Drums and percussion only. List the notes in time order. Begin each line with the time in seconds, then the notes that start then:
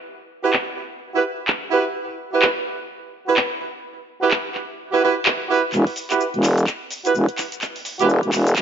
0.53 clap
1.48 clap
2.42 clap
3.37 clap
4.31 clap
4.55 clap
5.25 clap
5.72 clap, shaker
5.87 open hi-hat
5.96 open hi-hat, shaker
6.10 clap, closed hi-hat, shaker
6.20 shaker
6.34 closed hi-hat
6.43 clap, open hi-hat, shaker
6.58 closed hi-hat, shaker
6.67 clap, shaker
6.91 open hi-hat, shaker
7.05 closed hi-hat, shaker
7.15 shaker
7.29 closed hi-hat
7.38 clap, open hi-hat, shaker
7.52 closed hi-hat, shaker
7.61 clap, shaker
7.76 open hi-hat
7.85 open hi-hat, shaker
7.99 closed hi-hat, shaker
8.10 shaker
8.23 closed hi-hat
8.32 clap, open hi-hat, shaker
8.47 closed hi-hat, shaker
8.56 clap, shaker